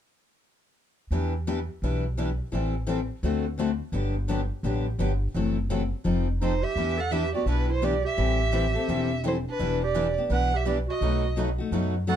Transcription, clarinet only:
6.41 6.64 D#4 medium
6.62 6.99 G4 medium
6.97 7.14 A4 medium
7.12 7.34 G4 medium
7.35 7.47 F#4 medium
7.48 7.68 D4 medium
7.69 7.85 E4 medium
7.83 8.04 G4 medium
8.05 9.20 G4 medium
9.26 9.35 E4 medium
9.48 9.80 D4 medium
9.83 10.15 G4 medium
10.31 10.56 B4 medium
10.55 10.65 G4 medium
10.66 10.76 G4 medium
10.88 11.34 F#4 medium
12.09 12.16 A4 medium

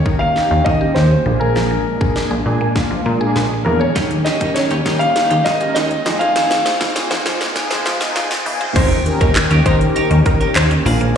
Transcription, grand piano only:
0.00 0.21 C#5 medium
0.19 0.62 F5 medium
0.64 0.96 D#5 medium
0.95 1.37 C5 medium
1.40 2.26 A#4 medium
3.65 3.81 A#4 medium
3.79 4.27 C#5 medium
4.24 4.56 D#5 medium
4.54 4.97 C#5 loud
4.99 5.46 F5 loud
5.44 5.73 D#5 medium
5.74 6.21 D#5 loud
6.19 7.06 F5 medium

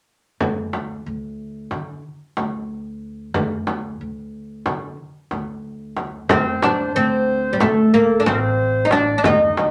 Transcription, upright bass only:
0.40 1.02 D2 medium
1.06 1.68 D2 medium
1.71 2.01 D3 medium
2.37 3.31 D2 medium
3.35 3.96 D2 medium
4.01 4.62 D2 medium
4.66 4.96 D3 medium
5.32 6.26 D2 medium
6.30 6.91 D2 medium
6.96 7.57 D2 medium
7.61 8.22 D2 medium
8.26 9.20 A1 medium
9.25 9.71 D2 loud

